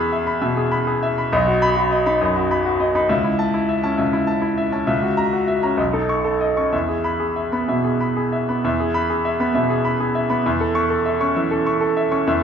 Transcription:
0.00 0.40 E2 medium
0.00 0.57 G#4 medium
0.00 0.12 E5 medium
0.00 0.27 B5 medium
0.12 0.36 E5 medium
0.27 0.51 B5 soft
0.42 0.66 B2 soft
0.42 0.66 E5 soft
0.57 0.82 G#4 medium
0.72 0.97 B5 medium
0.87 1.12 G#4 medium
1.03 1.27 E5 medium
1.18 1.33 B5 soft
1.33 2.18 B1 medium
1.33 1.56 D#5 medium
1.47 1.71 F#4 soft
1.62 1.86 B5 medium
1.76 2.00 F#4 medium
1.91 2.15 D#5 medium
2.06 2.30 D#4 soft
2.06 2.30 B5 medium
2.21 2.45 F#2 soft
2.21 2.45 D#5 medium
2.36 2.60 F#4 medium
2.51 2.75 B5 medium
2.65 2.89 F#4 soft
2.80 3.04 D#5 medium
2.95 3.10 D#4 soft
2.95 3.10 B5 medium
3.09 3.95 C#2 medium
3.09 3.33 E5 medium
3.25 3.48 E4 soft
3.39 3.63 A5 medium
3.54 3.77 E4 medium
3.69 3.92 E5 soft
3.83 4.07 C#4 soft
3.83 4.07 A5 medium
3.98 4.86 C#2 soft
3.98 4.22 E5 soft
4.13 4.37 E4 soft
4.27 4.52 A5 medium
4.42 4.66 E4 soft
4.57 4.82 E5 soft
4.72 4.88 C#4 soft
4.72 4.88 A5 soft
4.87 5.75 C#2 medium
4.87 5.12 E5 soft
5.02 5.27 F#4 soft
5.17 5.42 A#5 medium
5.33 5.57 F#4 soft
5.48 5.72 E5 soft
5.63 5.78 C#4 soft
5.63 5.78 A#5 soft
5.77 6.69 B1 soft
5.77 6.02 D#5 soft
5.93 6.18 D#4 soft
5.93 6.18 A4 soft
6.09 6.34 C#6 medium
6.24 6.50 A4 soft
6.41 6.66 D#5 soft
6.57 6.73 C#4 soft
6.57 6.73 C#6 soft
6.72 7.66 E2 soft
6.72 6.98 E5 soft
6.88 7.14 G#4 soft
7.04 7.30 B5 soft
7.20 7.46 G#4 soft
7.36 7.62 E5 soft
7.52 7.78 B3 soft
7.52 7.78 B5 soft
7.68 7.94 B2 soft
7.68 7.94 E5 soft
7.84 8.10 G#4 soft
8.01 8.26 B5 soft
8.17 8.43 G#4 soft
8.32 8.58 E5 soft
8.49 8.65 B3 soft
8.49 8.65 B5 soft
8.64 9.52 E2 medium
8.64 8.89 E5 soft
8.80 9.04 G#4 soft
8.94 9.19 B5 medium
9.10 9.34 G#4 soft
9.25 9.49 E5 soft
9.40 9.64 B3 soft
9.40 9.64 B5 soft
9.55 9.79 B2 soft
9.55 9.79 E5 soft
9.70 9.94 G#4 soft
9.85 10.09 B5 soft
10.00 10.25 G#4 soft
10.15 10.39 E5 soft
10.30 10.45 B3 soft
10.30 10.45 B5 soft
10.46 11.33 E2 medium
10.46 10.70 E5 soft
10.60 10.85 A4 soft
10.75 11.00 C#6 medium
10.90 11.14 A4 soft
11.05 11.30 E5 soft
11.20 11.45 C#4 soft
11.20 11.45 C#6 soft
11.36 11.60 E3 soft
11.36 11.60 E5 soft
11.51 11.76 A4 soft
11.66 11.91 C#6 medium
11.81 12.05 A4 soft
11.97 12.21 E5 medium
12.12 12.26 C#4 soft
12.12 12.26 C#6 soft
12.27 12.43 E2 medium
12.27 12.43 E5 medium

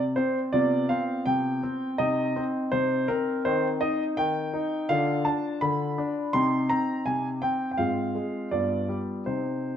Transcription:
0.00 0.16 C3 medium
0.00 0.49 G4 soft
0.16 0.52 C4 medium
0.16 0.38 C5 medium
0.53 0.89 C3 medium
0.53 1.96 B3 soft
0.53 1.96 F4 soft
0.53 0.86 D5 medium
0.89 1.25 C4 medium
0.89 1.22 F5 medium
1.26 1.62 C3 medium
1.26 1.99 G5 medium
1.63 1.98 C4 medium
1.98 2.35 C3 medium
1.98 2.35 C4 soft
1.98 3.41 D#4 soft
1.98 2.43 D#5 medium
2.36 2.72 C4 medium
2.72 3.08 C3 medium
2.72 3.09 C5 medium
3.08 3.44 C4 medium
3.08 3.41 A#4 medium
3.45 3.81 D#3 medium
3.45 4.86 C4 soft
3.45 3.80 D#4 soft
3.45 3.67 C5 medium
3.81 4.17 D#4 medium
3.81 4.03 D#5 medium
4.17 4.53 D#3 medium
4.17 4.90 G5 medium
4.54 4.89 D#4 medium
4.89 5.25 D3 medium
4.89 5.24 D4 soft
4.89 6.30 F4 soft
4.89 5.26 F5 medium
5.25 5.61 D4 medium
5.25 5.61 A5 medium
5.61 5.97 D3 medium
5.61 6.34 B5 medium
5.98 6.33 D4 medium
6.33 6.69 C3 medium
6.33 7.75 D#4 soft
6.33 7.75 G4 soft
6.33 6.70 C6 medium
6.70 7.05 C4 medium
6.70 7.06 A#5 medium
7.06 7.42 C3 medium
7.06 7.28 G#5 medium
7.42 7.77 C4 soft
7.42 7.69 G5 medium
7.71 7.79 G5 medium
7.78 8.14 G#2 medium
7.78 8.48 C4 soft
7.78 8.48 F4 soft
7.78 8.52 F5 medium
8.15 8.51 G#3 soft
8.51 8.89 G2 soft
8.51 9.24 B3 soft
8.51 9.24 F4 soft
8.51 8.97 D5 medium
8.89 9.26 G3 soft
9.26 9.77 C3 soft
9.26 9.77 C4 soft
9.26 9.77 D#4 soft
9.26 9.77 C5 soft

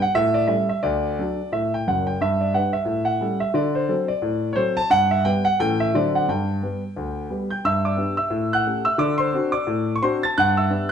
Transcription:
0.02 0.16 F#5 medium
0.15 0.44 A2 medium
0.15 0.36 E5 loud
0.34 0.49 D5 medium
0.47 0.67 G3 soft
0.47 0.67 C#4 soft
0.47 0.68 A4 soft
0.47 0.68 E5 medium
0.69 0.84 E5 medium
0.83 1.13 D2 medium
0.83 1.52 D5 medium
1.19 1.38 F#3 soft
1.19 1.38 D4 soft
1.19 1.38 A4 soft
1.52 1.81 A2 medium
1.52 1.73 E5 medium
1.74 1.87 G5 medium
1.87 2.14 F#1 medium
1.87 2.14 F#2 medium
1.87 2.07 F#5 medium
2.07 2.21 G5 medium
2.21 2.50 G2 medium
2.21 2.41 E5 medium
2.41 2.55 D5 medium
2.54 2.73 G3 soft
2.54 2.73 D4 soft
2.54 2.74 B4 soft
2.54 2.74 F#5 medium
2.73 3.08 E5 medium
2.85 3.16 A2 medium
3.05 3.41 F#5 medium
3.21 3.40 G3 soft
3.21 3.41 C#4 soft
3.21 3.41 A4 soft
3.40 3.55 E5 medium
3.54 3.84 D3 medium
3.54 3.76 D5 medium
3.75 4.10 C5 medium
3.89 4.08 F#3 soft
3.89 4.08 C4 soft
3.89 4.08 A4 soft
4.08 4.50 D5 medium
4.22 4.52 A2 medium
4.53 4.76 F#3 soft
4.53 4.76 C4 soft
4.53 4.76 A4 soft
4.53 4.77 C5 medium
4.53 4.59 C#5 medium
4.77 4.92 A5 loud
4.90 5.20 G2 medium
4.90 5.12 F#5 loud
5.11 5.26 E5 medium
5.25 5.44 G3 soft
5.25 5.44 B3 soft
5.25 5.45 B4 soft
5.25 5.46 G5 loud
5.45 5.60 F#5 loud
5.60 5.89 A2 medium
5.60 5.79 E3 soft
5.60 5.79 C#4 soft
5.60 5.79 A4 medium
5.60 5.80 G5 loud
5.80 5.94 E5 medium
5.94 6.23 D3 medium
5.94 6.13 F#3 soft
5.94 6.14 C4 soft
5.94 6.14 A4 soft
5.94 6.15 D5 medium
6.15 6.29 F#5 medium
6.28 6.57 G2 medium
6.28 7.30 G5 medium
6.63 6.81 G3 soft
6.63 6.81 B3 soft
6.63 6.82 G4 soft
6.97 7.25 D2 medium
7.30 7.49 G3 soft
7.30 7.49 B3 soft
7.30 7.50 G4 soft
7.50 7.64 G5 medium
7.50 7.64 G6 medium
7.65 7.93 G2 medium
7.65 7.84 E5 medium
7.65 7.84 E6 medium
7.85 8.17 D5 medium
7.85 8.18 D6 medium
7.97 8.16 B3 soft
7.97 8.16 D4 soft
7.97 8.16 G4 soft
8.17 8.49 E5 medium
8.17 8.51 E6 medium
8.30 8.60 A2 medium
8.53 8.85 F#5 medium
8.53 8.86 F#6 medium
8.66 8.85 A3 soft
8.66 8.85 C#4 soft
8.66 8.85 G4 soft
8.85 8.99 E5 medium
8.85 8.99 E6 medium
8.98 9.27 D3 medium
8.98 9.18 D5 medium
8.98 9.19 D6 medium
9.18 9.51 C5 medium
9.18 9.52 C6 medium
9.34 9.52 C4 soft
9.34 9.52 D4 soft
9.34 9.53 F#4 medium
9.52 9.91 D5 medium
9.52 9.94 D6 loud
9.67 9.96 A2 medium
9.96 10.02 C#6 medium
10.02 10.20 C4 soft
10.02 10.21 D4 medium
10.02 10.21 F#4 medium
10.02 10.21 C5 medium
10.02 10.22 C6 medium
10.23 10.36 A5 medium
10.23 10.36 A6 loud
10.38 10.65 G2 medium
10.38 10.56 F#5 medium
10.38 10.56 F#6 loud
10.57 10.88 E5 medium
10.57 10.90 E6 medium
10.70 10.88 B3 soft
10.70 10.88 D4 soft
10.70 10.89 G4 soft

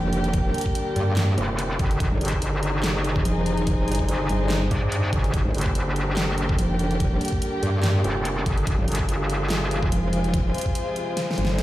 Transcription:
0.00 0.53 F1 loud
0.00 1.97 D3 medium
0.00 1.97 G3 medium
0.00 1.97 A#3 medium
0.00 2.00 D4 medium
0.00 1.97 G4 medium
0.00 2.00 G4 medium
0.00 3.22 A#4 medium
0.00 2.00 G5 medium
0.13 closed hi-hat medium
0.24 closed hi-hat soft
0.33 kick loud
0.33 closed hi-hat medium
0.54 closed hi-hat soft
0.58 closed hi-hat medium
0.61 closed hi-hat medium
0.66 kick medium
0.75 closed hi-hat medium
0.96 1.36 G2 loud
0.96 closed hi-hat medium
1.17 snare loud
1.17 clap medium
1.17 closed hi-hat medium
1.38 1.78 F1 loud
1.38 closed hi-hat medium
1.59 closed hi-hat medium
1.79 1.99 G1 loud
1.79 kick loud
1.79 closed hi-hat medium
1.91 closed hi-hat soft
2.00 2.10 G1 loud
2.00 5.30 C3 medium
2.00 5.30 D#3 medium
2.00 5.30 D#4 loud
2.00 5.34 D#4 medium
2.00 5.30 G#4 medium
2.00 kick loud
2.00 closed hi-hat medium
2.12 2.20 G1 loud
2.21 2.40 G1 loud
2.21 closed hi-hat soft
2.25 closed hi-hat medium
2.28 5.34 G#4 medium
2.28 closed hi-hat medium
2.33 kick medium
2.42 3.24 G1 loud
2.42 6.37 C5 medium
2.42 closed hi-hat medium
2.63 closed hi-hat medium
2.81 5.33 G#5 medium
2.81 snare loud
2.81 clap medium
2.81 closed hi-hat medium
3.04 closed hi-hat medium
3.16 kick loud
3.25 3.86 F1 loud
3.25 closed hi-hat medium
3.46 closed hi-hat medium
3.58 closed hi-hat soft
3.67 kick loud
3.67 closed hi-hat medium
3.88 4.07 G1 medium
3.88 closed hi-hat soft
3.92 closed hi-hat medium
3.95 closed hi-hat medium
3.99 kick medium
4.08 4.28 G1 loud
4.08 closed hi-hat medium
4.29 4.70 G1 loud
4.29 closed hi-hat soft
4.50 snare loud
4.50 clap medium
4.50 closed hi-hat medium
4.71 5.11 G2 loud
4.71 kick medium
4.71 closed hi-hat medium
4.92 closed hi-hat medium
5.13 5.32 G1 loud
5.13 kick loud
5.13 closed hi-hat medium
5.24 closed hi-hat soft
5.33 5.43 G1 medium
5.33 8.64 D3 medium
5.33 8.64 G3 medium
5.33 8.64 A#3 medium
5.33 9.24 D4 medium
5.33 8.64 G4 medium
5.33 kick loud
5.33 closed hi-hat medium
5.40 8.67 G4 medium
5.45 5.53 G#1 loud
5.54 5.74 G1 medium
5.54 closed hi-hat soft
5.58 closed hi-hat medium
5.61 closed hi-hat medium
5.66 kick medium
5.75 6.57 G1 loud
5.75 closed hi-hat medium
5.90 10.01 A#4 medium
5.96 closed hi-hat medium
6.17 snare loud
6.17 clap medium
6.17 closed hi-hat medium
6.23 8.67 G5 medium
6.38 closed hi-hat soft
6.49 kick loud
6.58 7.20 F1 loud
6.58 closed hi-hat medium
6.79 closed hi-hat medium
6.91 closed hi-hat soft
7.00 kick loud
7.00 closed hi-hat medium
7.21 closed hi-hat medium
7.25 closed hi-hat medium
7.28 closed hi-hat medium
7.33 kick medium
7.42 closed hi-hat medium
7.63 8.03 G2 loud
7.63 closed hi-hat medium
7.84 snare loud
7.84 clap medium
7.84 closed hi-hat medium
8.04 8.45 F1 loud
8.04 closed hi-hat medium
8.25 closed hi-hat medium
8.46 8.65 G1 loud
8.46 kick loud
8.46 closed hi-hat medium
8.58 closed hi-hat soft
8.67 8.77 G1 loud
8.67 11.63 C3 medium
8.67 11.63 F3 medium
8.67 11.63 G#3 medium
8.67 11.63 F4 medium
8.67 kick loud
8.67 closed hi-hat medium
8.78 8.86 G1 loud
8.84 9.07 G1 loud
8.84 11.63 G#4 medium
8.88 closed hi-hat medium
8.92 closed hi-hat medium
8.95 closed hi-hat medium
8.99 kick medium
9.09 9.90 G1 loud
9.09 closed hi-hat medium
9.23 11.63 G#5 medium
9.30 closed hi-hat medium
9.35 11.63 C5 medium
9.50 snare loud
9.50 clap medium
9.50 closed hi-hat medium
9.71 closed hi-hat medium
9.83 kick loud
9.92 10.53 F1 loud
9.92 closed hi-hat medium
10.13 closed hi-hat medium
10.24 closed hi-hat soft
10.34 kick loud
10.34 closed hi-hat medium
10.54 closed hi-hat medium
10.58 closed hi-hat medium
10.61 closed hi-hat medium
10.66 kick medium
10.75 closed hi-hat medium
10.96 closed hi-hat medium
11.17 snare medium
11.17 closed hi-hat medium
11.31 snare medium
11.38 11.63 G1 medium
11.38 closed hi-hat medium
11.45 snare medium
11.59 snare medium
11.59 closed hi-hat medium

